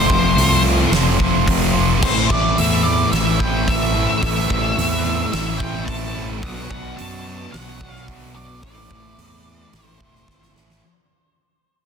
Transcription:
Already playing: F2 C3 F3 A3 C4 F4 C5
0.09 F1 C3 F3, kick
0.37 C2 F2 C3 F3 A3 C4 F4, open hi-hat
0.64 C3 F3
0.92 F1 F2 C3 F3 A3 C4 F4, snare, open hi-hat
1.19 C3 F3 A3 C4 F4, kick
1.46 F2 C3 F3, kick, open hi-hat
1.74 F3 A3 C4 F4
1.78 C3
2.02 A1 A2 E3 A3 C4 E4 C5, kick, crash
2.30 A1 E3 A3 D5, kick
2.57 E2 A2 E3 A3 C4 E4 E5, open hi-hat
2.84 E3 A3 D5
3.12 A1 A2 E3 A3 C4 E4 E5, snare, open hi-hat
3.39 E3 A3 C4 E4 G5, kick
3.67 A2 E3 A3 E5, kick, open hi-hat
3.94 E3 A3 C4 E4
4.22 A1 A2 E3 A3 C4 E4 E5, kick, open hi-hat
4.50 A1 E3 A3, kick
4.77 E2 A2 E3 A3 C4 E4, open hi-hat
5.04 E3 A3
5.32 A1 A2 E3 A3 C4 E4 E5, snare, open hi-hat
5.58 E3 A3 C4 E4 G5, kick
5.63 A3
5.86 A2 E3 A3 A5, kick, open hi-hat
6.15 E3 A3 C4 E4
6.42 B1 B2 F#3 B3 D4 F#4 F#5, kick, open hi-hat
6.70 B1 F#3 B3 F#5, kick
6.96 B2 F#3 B3 D4 F#4 A5, open hi-hat
7.00 F#2
7.25 F#3 B3
7.51 B1 B2 F#3 B3 D4 F#5, snare, open hi-hat
7.55 F#4
7.80 F#3 B3 D4 F#4, kick
7.90 F5
7.96 snare
8.07 B2 F#3 B3, kick, open hi-hat
8.34 F#3 B3 D4 F#4 D5
8.61 A1 A2 E3 A3 C4 E4 D5, kick, open hi-hat
8.89 A1 E3 A3, kick
9.17 E2 A2 E3 A3 C4 E4, open hi-hat
9.45 E3 A3
9.72 A1 A2 E3 A3 C4 E4, snare, open hi-hat
9.86 C5
9.99 E3 A3 C4 E4, kick
10.03 A3
10.15 snare
10.27 G1 A2 E3 A3, kick, snare
10.43 snare
10.54 A1 E3 A3 C4 E4, snare
10.58 A3
10.70 snare

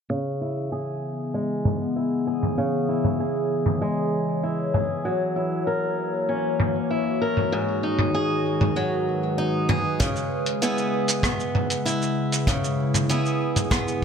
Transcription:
0.10 C#3 E3
0.41 E4
0.59 B3
0.72 G#4
1.32 G#3 G#4
1.65 C#5, mid tom
1.96 E4
2.27 G#4
2.43 mid tom
2.58 C#3
2.89 E4
3.04 mid tom
3.20 G#4
3.66 mid tom
3.82 G#3
4.43 E4
4.74 G#4, mid tom
5.05 F#3
5.36 E4
5.46 A#3
5.67 A#4
6.17 F#4
6.29 C#4
6.60 mid tom
6.90 E4
7.22 A#4
7.37 mid tom
7.52 G#2 D#3
7.83 D#4
7.90 G#3
7.99 mid tom
8.15 G#4
8.59 B4, mid tom
8.76 F#3
9.38 D#4
9.69 G#4, mid tom
10.00 C#3, kick, closed hi-hat, shaker
10.16 shaker
10.46 closed hi-hat
10.62 B3 E4 G#4, closed hi-hat, shaker
10.78 shaker
11.08 closed hi-hat, shaker
11.23 B3, kick, cross-stick, closed hi-hat, shaker
11.40 shaker
11.44 E4
11.55 mid tom
11.70 closed hi-hat, shaker
11.86 E4, closed hi-hat, shaker
12.02 shaker
12.32 closed hi-hat, shaker
12.47 C#3, kick, closed hi-hat, shaker
12.64 shaker
12.94 closed hi-hat, mid tom, shaker
13.09 B3 E4 G#4, closed hi-hat, shaker
13.26 shaker
13.56 closed hi-hat, mid tom, shaker
13.71 B3, kick, cross-stick, closed hi-hat, shaker
13.88 shaker

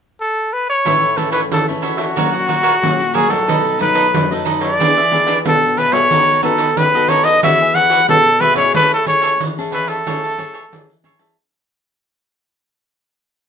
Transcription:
0.20 A4
0.53 B4
0.69 C#5
0.85 A2 E3 A3 C#4 E4 A4 C#5 E5, pandeiro
1.03 pandeiro
1.16 E3 A3 C#4 E4 A4 C#5 E5, pandeiro
1.31 E4 A4 B4 C#5 E5, pandeiro
1.52 E3 A4, pandeiro
1.68 E3 A3 C#4 A4 C#5 E5, pandeiro
1.82 E4 F#4 A4 C#5 E5, pandeiro
1.97 A4 C#5 E5, pandeiro
2.16 A#2 F#3 A#3 C#4 F#4 A#4 C#5 F#5, pandeiro
2.33 A#4 C#5 F#5, pandeiro
2.47 F#4 A#4 C#5 F#5, pandeiro
2.62 F#4 A#4 C#5 F#5, pandeiro
2.83 A#2 F#3 A#3 C#4, pandeiro
3.00 pandeiro
3.14 F#3 A#3 C#4 F#4 G#4 A#4 C#5 F#5, pandeiro
3.29 F#3 A3 D#4 A4 A#4 C#5 F#5, pandeiro
3.47 B2 D#4 A4 B4 D#5, pandeiro
3.66 pandeiro
3.79 F#3 A3 D#4 A4 B4 D#5, pandeiro
3.95 D#4 A4 B4 D#5, pandeiro
4.14 F#2, pandeiro
4.31 F#3 A3 D#4 A4 B4 D#5, pandeiro
4.45 D#4 A4 B4 D#5, pandeiro
4.60 A4 B4 D5 D#5, pandeiro
4.80 E3 B3 D4 G#4 B4 E5, pandeiro
4.97 G#4 B4 E5, pandeiro
5.12 B3 D4 G#4 B4 E5, pandeiro
5.27 D4 G#4 B4 E5, pandeiro
5.45 B2 B3 D4 A4, pandeiro
5.63 pandeiro
5.77 D4 G#4 B4 E5, pandeiro
5.92 B3 F#4 G#4 A4 B4 C#5 E5, pandeiro
6.11 D#3 D#4 A4 B4 D#5, pandeiro
6.29 pandeiro
6.43 B3 D#4 F#4 A4 B4 D#5, pandeiro
6.58 D#4 A4 B4 D#5, pandeiro
6.77 D#3 B4, pandeiro
6.94 B3 F#4 A4 B4 D#5, pandeiro
7.08 D#4 A4 B4 C#5 D#5, pandeiro
7.24 A4 B4 D#5, pandeiro
7.43 E3 B3 F#4 G#4 B4 E5, pandeiro
7.60 G#4 B4 E5, pandeiro
7.74 F#4 G#4 B4 E5 F#5, pandeiro
7.90 F#4 G#4 B4 E5, pandeiro
8.08 B2 B3 F#4 G#4 A4, pandeiro
8.26 pandeiro
8.40 B3 F#4 G#4 B4 E5, pandeiro
8.55 C#4 E4 G#4 B4 C#5 E5, pandeiro
8.74 A3 B4 C#5 E5 A5, pandeiro
8.92 A4, pandeiro
9.06 C#4 E4 G#4 C#5 E5 A5, pandeiro
9.22 G#4 C#5 E5 A5, pandeiro
9.40 E3, pandeiro
9.58 C#4 E4 G#4 C#5 E5 A5, pandeiro
9.72 G#4 B4 C#5 E5 A5, pandeiro
9.88 A4 C#5 E5 A5, pandeiro
10.06 A3 C#4 E4 G#4 C#5 E5 A5, pandeiro
10.24 C#5 E5 A5, pandeiro
10.38 C#4 E4 G#4 C#5 E5 A5, pandeiro
10.54 G#4 C#5 E5 A5, pandeiro
10.72 E3 C#4 E4 G#4, pandeiro
10.90 pandeiro
11.04 C#4 E4 G#4 C#5 E5 A5, pandeiro
11.19 C#4 E4 G#4 C#5 E5 A5, pandeiro

